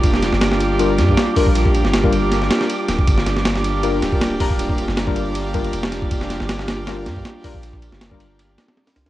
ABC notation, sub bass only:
X:1
M:4/4
L:1/16
Q:"Swing 16ths" 1/4=158
K:Gm
V:1 name="Sub bass" clef=bass
F,,,3 G,,,6- G,,, G,,2 z3 B,,,- | B,,,3 G,,,6- G,,, z4 D,,,2 | G,,,8- G,,,2 D,,,6- | D,,,3 G,,,8- G,,, F,,,4- |
F,,,3 G,,,6- G,,, G,,2 z3 B,,,- | B,,,3 G,,,6- G,,, z4 C,, D,, |]